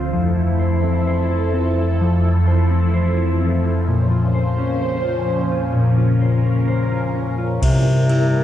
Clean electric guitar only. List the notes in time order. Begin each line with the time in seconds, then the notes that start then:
Already playing: D3 C4 F4 C5
0.13 F3
0.36 E4
0.59 C5
0.84 C4
1.07 C5
1.31 E4
1.54 C4
1.78 E4
2.01 F3
2.25 E4
2.48 C5
2.71 C4
2.94 C5
3.17 E4
3.40 C4
3.64 E4
3.87 A#2
4.11 F4
4.35 C5
4.58 C#4
4.81 C5
5.05 F4
5.28 C#4
5.52 F4
5.75 A#2
5.98 F4
6.21 C5
6.46 C#4
6.68 C5
6.92 F4
7.15 C#4
7.38 F4
7.62 C3
8.09 E4